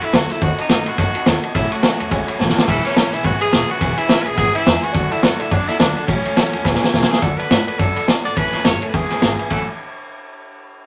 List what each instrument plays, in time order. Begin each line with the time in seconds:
0.01 steel-string acoustic guitar B3 F#4 A4, tenor saxophone E4, muted upright bass stroke, ride
0.13 upright bass D2, steel-string acoustic guitar D3 F#3 B3 F#4 A4, tenor saxophone F#4, snare, ride
0.30 steel-string acoustic guitar B3 F#4 A4, tenor saxophone E4, muted upright bass stroke, snare, ride
0.41 upright bass D#2, steel-string acoustic guitar D#3 A3 C4 D#4 F#4, tenor saxophone F#4, honky-tonk piano D#5 F#5 A5, kick, ride
0.58 steel-string acoustic guitar C4 D#4 F#4, tenor saxophone D#4, honky-tonk piano D#5 F#5 A5, ride
0.69 upright bass F#2, steel-string acoustic guitar D#3 A3 C4 D#4 F#4, tenor saxophone D#4, honky-tonk piano D#5 F#5 A5, snare, ride
0.86 upright bass A2, steel-string acoustic guitar D#4 F#4, tenor saxophone F#4, honky-tonk piano D#5 F#5 B5, ride
0.90 steel-string acoustic guitar C4
0.98 upright bass F#2, steel-string acoustic guitar A3 C4 D#4 F#4, tenor saxophone F#4, honky-tonk piano D#5 F#5 A5, kick, snare, ride
1.14 steel-string acoustic guitar C4 D#4 F#4, honky-tonk piano D#5 F#5 A5, muted upright bass stroke, ride
1.25 upright bass D#2, steel-string acoustic guitar D#3 A3 C4 D#4 F#4, honky-tonk piano A5, snare, ride
1.42 steel-string acoustic guitar C4 D#4 F#4, honky-tonk piano D#5 F#5 A5, muted upright bass stroke, ride
1.54 upright bass A1, steel-string acoustic guitar A2 E3 F#3 A3 C#4 F#4, tenor saxophone E4, honky-tonk piano C#5 E5 A5, kick, ride
1.70 steel-string acoustic guitar F#3 A3 C#4 F#4, tenor saxophone F#4, honky-tonk piano C#5 E5 A5, ride
1.82 upright bass C#2, steel-string acoustic guitar A2 E3 F#3 A3 C#4 F#4, honky-tonk piano C#5 E5 G#5, snare, ride
1.99 upright bass E2, steel-string acoustic guitar F#3 A3 C#4 F#4, honky-tonk piano C#5 E5 A5, ride
2.10 upright bass C#2, steel-string acoustic guitar F#3 A3 C#4 F#4, honky-tonk piano C#5 E5 G#5, kick, ride
2.26 steel-string acoustic guitar F#3 A3 C#4 F#4, honky-tonk piano C#5 E5 B5, muted upright bass stroke, ride
2.38 upright bass A1, steel-string acoustic guitar A2 E3 F#3 A3 C#4 F#4, honky-tonk piano C#5 E5 A5, snare
2.49 snare
2.55 steel-string acoustic guitar F#3 A3 C#4 F#4, honky-tonk piano C#5 E5 A5, muted upright bass stroke, snare
2.67 upright bass E1, steel-string acoustic guitar E3 G#3 B3 C#4 G#4, tenor saxophone E4, honky-tonk piano B4 E5 G#5, kick, crash, ride
2.83 tenor saxophone C#4, steel-string acoustic guitar C#4 G#4, honky-tonk piano B4 E5 G#5, muted upright bass stroke, snare, ride
2.87 steel-string acoustic guitar B3
2.95 upright bass G#1, steel-string acoustic guitar E3 G#3 B3 C#4 G#4, tenor saxophone C#4, honky-tonk piano B4 E5 B5, snare, ride
3.12 upright bass B1, steel-string acoustic guitar B3 C#4 G#4, tenor saxophone E4, honky-tonk piano B4 E5 G#5, ride
3.23 upright bass G#1, steel-string acoustic guitar G#3 B3 C#4, tenor saxophone F#4, honky-tonk piano B4 E5 B5, kick, ride
3.27 steel-string acoustic guitar G#4
3.40 steel-string acoustic guitar C#4 G#4, tenor saxophone G#4, honky-tonk piano B4 E5 G#5, ride
3.44 steel-string acoustic guitar B3
3.51 upright bass E1, steel-string acoustic guitar E3 G#3 B3 C#4 G#4, honky-tonk piano B4 E5, snare, ride
3.68 steel-string acoustic guitar B3 C#4 G#4, tenor saxophone F#4, honky-tonk piano B4 E5 F#5, ride
3.79 upright bass E1, steel-string acoustic guitar E3 G#3 B3 C#4 G#4, honky-tonk piano B4 E5 G#5, kick, ride
3.96 steel-string acoustic guitar B3 C#4 G#4, tenor saxophone E4, honky-tonk piano B4 E5 G#5, muted upright bass stroke, ride
4.08 upright bass G#1, steel-string acoustic guitar E3 G#3 B3 C#4 G#4, honky-tonk piano B4 E5, snare, ride
4.22 steel-string acoustic guitar G#4, tenor saxophone B4, honky-tonk piano B4 E5 G#5, ride
4.26 upright bass B1, steel-string acoustic guitar B3 C#4, tenor saxophone G#4
4.35 upright bass G#1, steel-string acoustic guitar G#3 B3 C#4, tenor saxophone G#4, honky-tonk piano B4 E5 F#5, kick, snare, ride
4.40 steel-string acoustic guitar G#4
4.53 steel-string acoustic guitar B3 C#4 G#4, tenor saxophone E4, honky-tonk piano B4 E5 G#5, ride
4.65 upright bass E2, steel-string acoustic guitar E3 G#3 B3 C#4 G#4, honky-tonk piano B4 E5 G#5, snare, ride
4.82 steel-string acoustic guitar B3 C#4 G#4, tenor saxophone F#4, honky-tonk piano B4 E5 G#5, muted upright bass stroke, ride
4.92 upright bass D2, steel-string acoustic guitar D3 F#3 B3 F#4 A4, honky-tonk piano D5 F#5 A5, kick, ride
5.10 tenor saxophone E4, steel-string acoustic guitar F#4 A4, honky-tonk piano D5 F#5 A5, ride
5.14 steel-string acoustic guitar B3
5.22 upright bass F#2, steel-string acoustic guitar D3 F#3 B3 F#4 A4, tenor saxophone F#4, honky-tonk piano D5 A5, snare, ride
5.39 upright bass A2, steel-string acoustic guitar B3 F#4 A4, tenor saxophone E4, honky-tonk piano D5 F#5 A5, ride
5.51 upright bass F#2, steel-string acoustic guitar F#3 B3 F#4 A4, tenor saxophone D4, honky-tonk piano D5 F#5 A5, kick, ride
5.67 steel-string acoustic guitar B3 F#4 A4, tenor saxophone E4, honky-tonk piano D5 F#5 A5, muted upright bass stroke, snare, ride
5.79 upright bass D2, steel-string acoustic guitar D3 F#3 B3 F#4 A4, tenor saxophone D4, honky-tonk piano D5 A5, snare, ride
5.96 steel-string acoustic guitar B3 F#4 A4, tenor saxophone D4, honky-tonk piano D5 F#5 A5, ride
6.07 upright bass A1, steel-string acoustic guitar A2 E3 F#3 A3 C#4 F#4, tenor saxophone C#4, honky-tonk piano C#5 E5 A5, kick, ride
6.24 steel-string acoustic guitar F#3 A3 C#4 F#4, honky-tonk piano C#5 E5 G#5, muted upright bass stroke, ride
6.35 upright bass C#2, steel-string acoustic guitar A2 E3 F#3 A3 C#4 F#4, honky-tonk piano C#5 E5 A5, snare, ride
6.53 upright bass E2, steel-string acoustic guitar F#3 A3 C#4 F#4, honky-tonk piano C#5 E5 A5, ride
6.64 upright bass E1, steel-string acoustic guitar G#3 B3 C#4 G#4, honky-tonk piano B4 E5 G#5, kick, snare
6.75 snare
6.82 steel-string acoustic guitar B3 C#4 G#4, honky-tonk piano B4 E5 G#5, muted upright bass stroke, snare
6.93 upright bass E1, steel-string acoustic guitar E3 G#3 B3 C#4 G#4, honky-tonk piano B4 E5 G#5, snare
7.03 snare
7.10 steel-string acoustic guitar B3 C#4 G#4, tenor saxophone G#4, honky-tonk piano B4 E5 G#5, snare
7.22 upright bass D2, steel-string acoustic guitar D3 F#3 B3 F#4 A4, tenor saxophone A4, honky-tonk piano D5 F#5 A5, kick, ride
7.38 steel-string acoustic guitar B3 F#4 A4, tenor saxophone B4, honky-tonk piano D5 F#5 A5, muted upright bass stroke, ride
7.50 upright bass A2, steel-string acoustic guitar F#3 B3 F#4 A4, honky-tonk piano D5 F#5 A5, snare, ride
7.67 steel-string acoustic guitar F#4 A4, tenor saxophone B4, honky-tonk piano D5 F#5 A5, muted upright bass stroke, ride
7.71 steel-string acoustic guitar B3
7.78 upright bass F#2, steel-string acoustic guitar D3 F#3 B3 F#4 A4, tenor saxophone A4, honky-tonk piano D5 F#5 A5, kick, ride
7.95 steel-string acoustic guitar F#4 A4, honky-tonk piano D5 F#5 B5, muted upright bass stroke, ride
7.99 steel-string acoustic guitar B3
8.07 upright bass D2, steel-string acoustic guitar F#3 B3, honky-tonk piano D5 F#5 G#5, snare, ride
8.11 steel-string acoustic guitar F#4 A4
8.24 upright bass G#1, steel-string acoustic guitar B3 F#4 A4, honky-tonk piano D5 F#5 A5, tenor saxophone D5, ride
8.36 upright bass A1, steel-string acoustic guitar A2 E3 F#3 A3 C#4 A4, tenor saxophone B4, honky-tonk piano C#5 E5 A5, kick, ride
8.53 upright bass E2, steel-string acoustic guitar F#3 A3 C#4 A4, honky-tonk piano C#5 E5 A5, snare, ride
8.64 upright bass F#1, steel-string acoustic guitar F#3 A3 C#4, honky-tonk piano C#5 E5 A5, tenor saxophone C#5, snare, ride
8.82 steel-string acoustic guitar F#3 A3 C#4 A4, honky-tonk piano C#5 E5 A5, muted upright bass stroke, ride
8.88 tenor saxophone B4
8.93 upright bass E1, steel-string acoustic guitar E3 G#3 B3 C#4 G#4, tenor saxophone G#4, honky-tonk piano B4 E5 G#5, kick, ride
9.11 upright bass G#1, steel-string acoustic guitar B3 C#4 G#4, honky-tonk piano B4 E5 G#5, snare, ride
9.22 upright bass G#1, steel-string acoustic guitar G#3 B3 C#4 G#4, honky-tonk piano B4 E5 F#5, snare, ride
9.39 steel-string acoustic guitar B3 C#4 G#4, honky-tonk piano B4 E5 G#5, ride
9.50 upright bass A1, steel-string acoustic guitar A2 E3 F#3 A3 C#4 F#4, tenor saxophone A4, honky-tonk piano C#5 E5, kick, crash